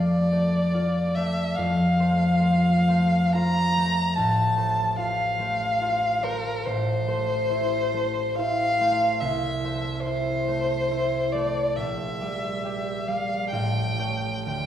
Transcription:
Already playing: harp F2 A3 F4 D5, violin D5
0.32 harp A3 D5
0.74 harp F4 D5
1.15 harp A3 D5, violin E5
1.55 harp F2, violin F5
1.99 harp A3 C5
2.42 harp F4 C5
2.88 harp A3 C5
3.32 harp F4 C5, violin A#5
3.77 harp A3 C5
4.15 harp A1, violin A5
4.57 harp A3 C5
4.98 harp F4 C5, violin F5
5.39 harp A3 C5
5.81 harp F4 C5
6.23 harp A3 C5, violin A#4
6.65 harp A1, violin C5
7.08 harp A3 C5
7.50 harp E4 C5
7.94 harp A3 C5
8.36 harp E4 C5, violin F5
8.81 harp A3 C5
9.21 harp C2, violin E5
9.64 harp A3 C5
10.04 harp E4 C5, violin C5
10.48 harp A3 C5
10.91 harp E4 C5
11.32 harp A3 C5, violin D5
11.76 harp A#1, violin E5
12.20 harp G3 D5
12.65 harp G4 D5
13.07 harp G3 D5, violin F5
13.51 harp A1, violin G5
13.98 harp A3 C#5
14.46 harp D2, violin G5

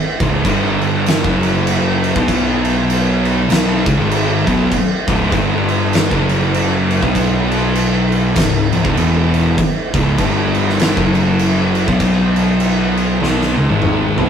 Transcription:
0.20 picked electric bass C#1, distorted electric guitar C#2 G#2 C#3, kick, crash
0.44 picked electric bass G1, distorted electric guitar G2 D3 G3, kick, crash
0.81 crash
1.06 snare, crash
1.24 picked electric bass F#1, distorted electric guitar F#2 C#3 F#3, kick
1.43 crash
1.67 crash
2.04 crash
2.16 picked electric bass B1, distorted electric guitar B2 F#3 B3, kick
2.28 kick, crash
2.65 crash
2.90 crash
3.25 crash
3.50 picked electric bass B1, distorted electric guitar B2 F#3 B3, snare, crash
3.86 picked electric bass C#2, distorted electric guitar C#3 G#3, kick, crash
3.98 picked electric bass G#1, distorted electric guitar G#2 D#3 G#3
4.11 crash
4.47 picked electric bass B1, distorted electric guitar B2 F#3 B3, kick, crash
4.72 kick, crash
5.08 picked electric bass C#1, distorted electric guitar C#2 G#2 C#3, kick, crash
5.32 picked electric bass G1, distorted electric guitar G2 D3 G3, kick, crash
5.68 crash
5.93 snare, crash
6.11 picked electric bass F#1, distorted electric guitar F#2 C#3 F#3, kick
6.29 crash
6.54 crash
6.91 crash
7.03 picked electric bass B1, distorted electric guitar B2 F#3 B3, kick
7.15 kick, crash
7.51 crash
7.75 crash
8.12 crash
8.36 picked electric bass C#1, distorted electric guitar C#2 G#2, kick, snare, crash
8.72 picked electric bass C#1, distorted electric guitar C#2 G#2, crash
8.84 picked electric bass C#1, distorted electric guitar C#2 G#2, kick
8.97 picked electric bass E1, distorted electric guitar E2 B2 E3, crash
9.34 crash
9.58 kick, crash
9.94 picked electric bass C#1, distorted electric guitar C#2 G#2 C#3, kick, crash
10.18 picked electric bass G1, distorted electric guitar G2 D3 G3, kick, crash
10.55 crash
10.69 snare
10.80 snare, crash
10.97 picked electric bass F#1, distorted electric guitar F#2 C#3 F#3, kick
11.15 crash
11.39 crash
11.75 crash
11.88 picked electric bass B1, distorted electric guitar B2 F#3 B3, kick
12.00 kick, crash
12.36 crash
12.60 crash
12.97 crash
13.21 picked electric bass B1, distorted electric guitar B2 F#3 B3, snare
13.42 snare
13.57 picked electric bass C#2, distorted electric guitar C#3 G#3
13.70 picked electric bass G#1, distorted electric guitar G#2 D#3 G#3, high tom
13.82 mid tom
14.18 picked electric bass B1, distorted electric guitar B2 F#3 B3, floor tom

